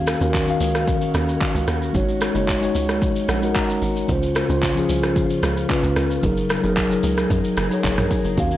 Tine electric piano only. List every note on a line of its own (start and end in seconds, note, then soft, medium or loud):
0.00 0.12 D#3 medium
0.00 0.13 C#4 medium
0.00 0.13 F#4 medium
0.00 0.14 F5 medium
0.20 0.42 D#3 medium
0.20 0.42 C#4 medium
0.20 0.43 F#4 medium
0.20 0.44 A#4 loud
0.46 1.33 D#3 medium
0.46 1.33 C#4 medium
0.46 1.34 F#4 medium
0.46 1.35 F5 loud
1.93 2.26 G#3 medium
1.93 2.27 D#4 medium
1.93 2.28 F#4 medium
1.93 2.28 C#5 loud
2.34 2.56 G#3 medium
2.34 2.57 D#4 medium
2.34 2.57 F#4 medium
2.34 2.58 C#5 loud
2.61 3.25 G#3 medium
2.61 3.26 D#4 medium
2.61 3.27 F#4 medium
2.61 3.27 C#5 loud
3.29 3.54 F#5 medium
3.41 3.95 G#3 medium
3.41 3.96 D#4 medium
3.41 3.97 F#4 medium
3.41 3.97 A#4 medium
3.56 4.06 A#5 medium
4.08 4.41 C#3 medium
4.08 4.41 C#4 medium
4.08 4.42 F4 medium
4.08 4.43 C5 medium
4.48 4.70 C#3 medium
4.48 4.71 C#4 medium
4.48 4.71 F4 medium
4.48 4.72 C5 loud
4.75 5.61 F3 medium
4.75 5.62 C#4 medium
4.75 5.62 F4 medium
4.75 5.63 G#4 loud
5.68 6.12 C#3 medium
5.68 6.13 C#4 medium
5.68 6.14 F4 medium
5.68 6.14 B4 loud
6.21 6.55 F#3 medium
6.21 6.55 D#4 medium
6.21 6.56 G#4 medium
6.21 6.57 A#4 medium
6.62 6.84 F#3 medium
6.62 6.85 D#4 medium
6.62 6.86 G#4 medium
6.62 6.86 A#4 loud
6.89 7.54 F#3 medium
6.89 7.54 D#4 medium
6.89 7.55 G#4 medium
6.89 7.56 A#4 loud
7.70 8.24 F#3 medium
7.70 8.25 D#4 medium
7.70 8.25 G#4 medium
7.70 8.26 C#5 loud
8.36 8.57 D#3 medium
8.36 8.57 C#4 medium
8.36 8.57 F#4 medium
8.36 8.57 F5 loud